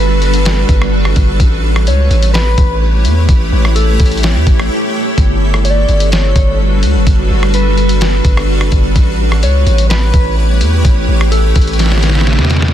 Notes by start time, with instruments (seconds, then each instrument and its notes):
Already playing: 808-style bass G1, ambient pad G3 D4 F#4 A4 B4
0.00 clean electric guitar B4
0.22 closed hi-hat
0.34 closed hi-hat
0.45 snare, closed hi-hat
0.69 808-style bass G1, kick, closed hi-hat
0.82 cross-stick
1.05 cross-stick
1.16 808-style bass G1, kick, closed hi-hat
1.40 808-style bass A1, ambient pad A3 E4 G4 C#5, kick, closed hi-hat
1.76 cross-stick
1.87 808-style bass C#2, clean electric guitar C#5, closed hi-hat
2.11 808-style bass A1, closed hi-hat
2.23 closed hi-hat
2.34 clean electric guitar B4, snare, closed hi-hat
2.58 808-style bass A1, kick, closed hi-hat
3.05 808-style bass E2, closed hi-hat
3.29 808-style bass A1, ambient pad A4, kick, closed hi-hat
3.52 808-style bass A1
3.65 cross-stick
3.75 clean electric guitar A4, closed hi-hat
4.00 808-style bass A1, kick, closed hi-hat
4.06 closed hi-hat
4.12 closed hi-hat
4.17 closed hi-hat
4.23 snare, closed hi-hat
4.35 808-style bass E2
4.47 808-style bass A1, kick, closed hi-hat
4.59 cross-stick
5.18 808-style bass G1, ambient pad G3 D4 F#4 B4, kick, closed hi-hat
5.54 cross-stick
5.65 clean electric guitar D5, closed hi-hat
5.89 808-style bass G1, closed hi-hat
6.00 closed hi-hat
6.12 clean electric guitar C#5, snare, closed hi-hat
6.36 808-style bass G1, kick, closed hi-hat
6.83 808-style bass D2, closed hi-hat
6.95 808-style bass G1
7.07 808-style bass G1, kick, closed hi-hat
7.30 808-style bass G1
7.43 cross-stick
7.54 clean electric guitar B4, closed hi-hat
7.78 closed hi-hat
7.89 closed hi-hat
8.01 snare, closed hi-hat
8.25 808-style bass G1, kick, closed hi-hat
8.37 cross-stick
8.61 cross-stick
8.72 808-style bass G1, kick, closed hi-hat
8.95 808-style bass A1, ambient pad A3 E4 G4 C#5, kick, closed hi-hat
9.32 cross-stick
9.43 808-style bass C#2, clean electric guitar C#5, closed hi-hat
9.67 808-style bass A1, closed hi-hat
9.78 closed hi-hat
9.90 clean electric guitar B4, snare, closed hi-hat
10.14 808-style bass A1, kick, closed hi-hat
10.61 808-style bass E2, closed hi-hat
10.85 808-style bass A1, kick, closed hi-hat
11.08 808-style bass A1
11.21 cross-stick
11.31 clean electric guitar A4, closed hi-hat
11.56 808-style bass A1, kick, closed hi-hat
11.62 closed hi-hat
11.67 closed hi-hat
11.73 closed hi-hat
11.79 snare, closed hi-hat
11.86 snare
11.92 snare
11.98 snare
12.03 snare, closed hi-hat
12.09 snare
12.15 snare
12.21 snare
12.27 snare
12.33 snare
12.38 808-style bass E2, snare
12.45 snare
12.50 snare, closed hi-hat
12.57 snare
12.62 snare
12.68 snare